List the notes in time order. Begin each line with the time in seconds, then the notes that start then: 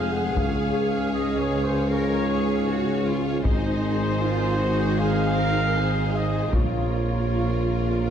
Already playing: F1 F2 G#3 C4 G#4 C5 F5
0.11 F#5
0.36 C#2 G#2 C#4 C#5 F5, taiko
1.13 D#5
1.39 C#5
1.65 C5
1.91 A#4 C#5
2.30 G#4
2.68 F#4
3.07 F4
3.44 G#1 D#3 G#3 C4 D#4 G#4 C5, taiko
4.21 F4
4.59 F#4
4.98 G#4 F5
5.38 A#4
5.77 G#4
6.15 D#5
6.53 A#1 F2 F3 A#3 F4 A#4 C#5, taiko